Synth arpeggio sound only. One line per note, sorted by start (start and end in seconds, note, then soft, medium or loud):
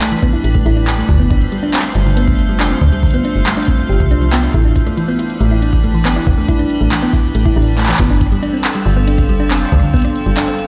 0.01 0.10 A3 medium
0.12 0.22 E3 loud
0.22 0.31 B3 loud
0.33 0.42 E4 medium
0.55 0.64 A3 medium
0.66 0.76 E4 loud
0.76 0.85 D4 medium
0.98 1.07 A3 medium
1.09 1.19 D3 loud
1.20 1.29 B3 loud
1.30 1.39 D4 medium
1.52 1.61 G3 medium
1.63 1.73 D4 loud
1.74 1.83 C4 medium
1.95 2.04 G3 medium
2.06 2.16 D3 loud
2.17 2.26 B3 loud
2.28 2.36 D4 medium
2.49 2.58 G3 medium
2.60 2.70 D4 loud
2.71 2.80 C4 medium
2.92 3.01 G3 medium
3.03 3.13 D3 loud
3.14 3.23 B3 loud
3.25 3.34 D4 medium
3.46 3.55 G3 medium
3.57 3.67 D4 loud
3.68 3.77 C4 medium
3.89 3.98 G4 medium
4.00 4.09 D3 medium
4.11 4.21 D4 loud
4.22 4.27 F3 medium
4.33 4.42 B3 loud
4.43 4.54 D4 medium
4.54 4.64 E4 loud
4.65 4.74 D4 medium
4.87 4.95 A3 medium
4.97 5.08 E3 loud
5.08 5.17 B3 loud
5.19 5.28 E4 medium
5.40 5.49 A3 medium
5.51 5.62 E4 loud
5.62 5.71 D4 medium
5.84 5.93 A3 medium
5.94 6.05 E3 loud
6.05 6.14 B3 loud
6.16 6.25 E4 medium
6.38 6.47 A3 medium
6.48 6.59 E4 loud
6.59 6.68 D4 medium
6.81 6.90 A3 medium
6.92 7.02 E3 loud
7.02 7.11 B3 loud
7.13 7.22 E4 medium
7.35 7.44 A3 medium
7.46 7.56 E4 loud
7.56 7.65 D4 medium
7.78 7.87 A3 medium
7.89 7.99 E3 medium
8.00 8.08 B3 medium
8.10 8.19 D4 medium
8.32 8.41 G3 medium
8.43 8.53 D4 loud
8.53 8.62 C4 medium
8.75 8.84 G3 medium
8.86 8.96 D3 loud
8.97 9.06 B3 loud
9.07 9.16 D4 medium
9.29 9.38 G3 medium
9.40 9.50 D4 loud
9.51 9.60 C4 medium
9.72 9.81 G3 medium
9.83 9.93 D3 loud
9.94 10.03 B3 loud
10.05 10.14 D4 medium
10.26 10.35 G3 medium
10.37 10.47 D4 medium
10.48 10.57 C4 medium